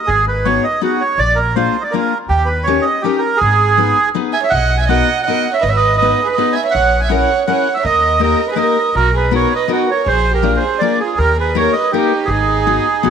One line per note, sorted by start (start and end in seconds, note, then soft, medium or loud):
0.07 0.56 G#1 medium
0.07 0.25 G#4 loud
0.28 0.46 B4 medium
0.45 0.65 B3 medium
0.45 0.65 D#4 medium
0.45 0.65 F#4 medium
0.45 0.65 G#4 medium
0.45 0.65 C#5 medium
0.64 0.81 D#5 medium
0.81 1.01 B3 medium
0.81 1.01 D#4 medium
0.81 1.02 F#4 soft
0.81 1.03 F#4 medium
0.81 1.02 G#4 medium
1.01 1.20 C#5 medium
1.18 1.66 A#1 medium
1.18 1.39 D5 loud
1.36 1.56 A#4 medium
1.56 1.75 A#3 medium
1.56 1.75 D4 medium
1.56 1.76 F4 medium
1.56 1.76 G#4 medium
1.56 1.82 C5 medium
1.81 1.93 D5 medium
1.81 1.84 D#5 medium
1.91 2.12 A#3 medium
1.91 2.12 D4 medium
1.91 2.13 F4 soft
1.91 2.13 G#4 medium
1.91 2.18 A#4 medium
2.29 2.77 D#2 medium
2.29 2.49 G4 loud
2.46 2.66 B4 medium
2.64 2.86 C#4 medium
2.64 2.86 G4 medium
2.64 2.85 C#5 medium
2.68 2.86 D#4 medium
2.68 2.86 A#4 medium
2.82 3.02 D#5 medium
3.02 3.23 C#4 medium
3.02 3.23 D#4 medium
3.02 3.20 G4 medium
3.02 3.23 G4 soft
3.02 3.24 A#4 medium
3.18 3.39 A#4 medium
3.37 4.09 G#4 loud
3.41 3.90 G#1 medium
3.77 3.97 B3 medium
3.77 3.97 D#4 medium
3.77 3.97 G#4 medium
3.77 3.97 B4 medium
4.15 4.34 B3 medium
4.15 4.34 D#4 medium
4.15 4.35 G#4 medium
4.15 4.34 B4 medium
4.33 4.42 E5 medium
4.33 4.43 G#5 medium
4.42 4.51 C#5 medium
4.42 4.53 E5 medium
4.50 5.00 B1 medium
4.50 4.78 D#5 medium
4.50 4.77 F#5 loud
4.78 4.88 G#5 medium
4.82 4.88 E5 medium
4.88 5.08 B3 medium
4.88 5.08 D#4 medium
4.88 5.08 F#4 medium
4.88 5.09 A#4 medium
4.88 5.23 D#5 medium
4.88 5.21 F#5 loud
5.23 5.53 F#5 medium
5.27 5.46 B3 medium
5.27 5.46 D#4 medium
5.27 5.46 F#4 soft
5.27 5.47 A#4 medium
5.27 5.52 D#5 medium
5.53 5.60 C#5 medium
5.53 5.63 E5 medium
5.61 6.11 G#1 medium
5.61 5.68 B4 medium
5.61 5.70 D#5 loud
5.68 5.74 C#5 medium
5.68 5.77 E5 medium
5.75 5.97 B4 medium
5.75 5.96 D#5 loud
5.97 6.24 B4 medium
5.97 6.27 D#5 medium
6.02 6.20 B3 medium
6.02 6.20 D#4 medium
6.02 6.20 G#4 medium
6.02 6.20 B4 medium
6.24 6.32 G#4 medium
6.24 6.35 B4 medium
6.33 6.52 B4 medium
6.33 6.55 D#5 medium
6.38 6.56 B3 medium
6.38 6.56 D#4 medium
6.38 6.57 G#4 medium
6.38 6.56 B4 medium
6.53 6.63 E5 medium
6.53 6.63 G#5 medium
6.64 6.72 C#5 medium
6.64 6.73 E5 medium
6.71 6.99 C#5 medium
6.71 7.01 F#5 loud
6.75 7.22 A#1 medium
7.00 7.10 G#5 medium
7.04 7.11 E5 medium
7.04 7.43 F#5 medium
7.09 7.29 C#4 medium
7.09 7.29 E4 medium
7.09 7.29 G#4 medium
7.09 7.30 A#4 medium
7.15 7.47 C#5 medium
7.48 7.66 C#4 medium
7.48 7.67 E4 medium
7.48 7.67 G#4 medium
7.48 7.66 A#4 medium
7.48 7.76 F#5 medium
7.52 7.76 C#5 medium
7.74 7.84 E5 medium
7.79 7.85 C#5 medium
7.85 8.33 D#2 medium
7.85 8.19 A#4 medium
7.85 8.21 D#5 loud
8.20 8.39 A#3 medium
8.20 8.40 D#4 soft
8.20 8.40 G4 medium
8.20 8.40 A#4 medium
8.20 8.48 A#4 medium
8.20 8.51 D#5 medium
8.48 8.58 B4 medium
8.52 8.76 A#3 medium
8.52 8.59 G#4 medium
8.52 8.95 D#5 medium
8.56 8.77 D#4 soft
8.56 8.76 G4 soft
8.56 8.77 A#4 medium
8.56 8.93 A#4 medium
8.95 9.44 B1 medium
8.95 9.14 F#4 medium
8.95 9.15 A#4 loud
9.15 9.32 G#4 medium
9.15 9.34 B4 medium
9.31 9.51 B3 medium
9.31 9.51 D#4 medium
9.31 9.52 F#4 medium
9.31 9.52 A#4 medium
9.36 9.54 C#5 medium
9.54 9.70 B4 medium
9.54 9.72 D#5 medium
9.68 9.88 B3 medium
9.68 9.88 D#4 medium
9.68 9.88 F#4 medium
9.68 9.88 A#4 medium
9.72 9.89 D#4 medium
9.72 9.91 F#4 medium
9.90 10.06 A#4 medium
9.90 10.08 C#5 medium
10.06 10.55 A#1 medium
10.06 10.30 G#4 medium
10.06 10.33 C5 loud
10.34 10.56 G4 medium
10.34 10.58 A#4 medium
10.42 10.62 A#3 medium
10.42 10.62 D4 medium
10.42 10.63 F4 medium
10.42 10.63 G#4 medium
10.56 10.80 G#4 medium
10.56 10.82 C5 medium
10.79 11.00 A#3 medium
10.79 11.00 D4 medium
10.79 11.01 F4 medium
10.79 10.99 D5 medium
10.83 11.01 G#4 medium
10.83 11.00 A#4 medium
11.00 11.19 F4 medium
11.00 11.19 G#4 medium
11.18 11.66 D#2 medium
11.18 11.37 G4 medium
11.18 11.37 A#4 loud
11.39 11.54 G#4 medium
11.39 11.57 B4 medium
11.55 11.74 A#3 medium
11.55 11.74 D#4 medium
11.55 11.74 G4 medium
11.55 11.74 A#4 medium
11.55 11.73 C#5 medium
11.73 11.92 D#5 medium
11.78 11.92 B4 medium
11.92 12.11 A#3 medium
11.92 12.12 D#4 medium
11.92 12.28 D#4 medium
11.92 12.30 G4 medium
11.92 12.12 G4 medium
11.92 12.12 A#4 medium
12.25 12.76 G#1 medium
12.25 13.10 G#4 medium
12.33 13.10 D#4 medium
12.67 12.86 B3 medium
12.67 12.85 D#4 medium
12.67 12.86 F#4 soft
12.67 12.86 G#4 medium
13.03 13.10 A#1 medium
13.03 13.10 B3 medium
13.03 13.10 D#4 medium
13.03 13.10 F#4 medium
13.03 13.10 G#4 medium